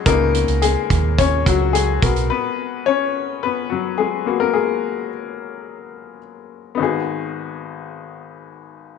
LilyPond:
<<
  \new Staff \with { instrumentName = "Upright piano" } { \time 4/4 \key gis \minor \tempo 4 = 107 <ais ais'>4 <gis gis'>4 <cis' cis''>8 <fis fis'>8 <gis gis'>4 | <b b'>4 <cis' cis''>4 <b b'>8 <fis fis'>8 <gis gis'>8. <ais ais'>16 | <gis gis'>2. r4 | <b dis' fis' gis'>1 | }
  \new Staff \with { instrumentName = "Upright piano" } { \time 4/4 \key gis \minor <cis b dis' e'>2.~ <cis b dis' e'>8 <b fis' ais'>8~ | <b fis' ais'>4 r2 r8 <ais b fis'>8~ | <ais b fis'>4 r2. | gis,,1 | }
  \new Staff \with { instrumentName = "Fingered electric bass" } { \clef bass \time 4/4 \key gis \minor cis,8. cis,8 r16 dis,4 cis,4 b,,8 | r1 | r1 | r1 | }
  \new DrumStaff \with { instrumentName = "Drums" } \drummode { \time 4/4 <hh bd>8 hh16 hh16 hh8 <hh bd>8 <hh bd>8 <hh bd>8 hh8 <hh bd>16 hh16 | r4 r4 r4 r4 | r4 r4 r4 r4 | r4 r4 r4 r4 | }
>>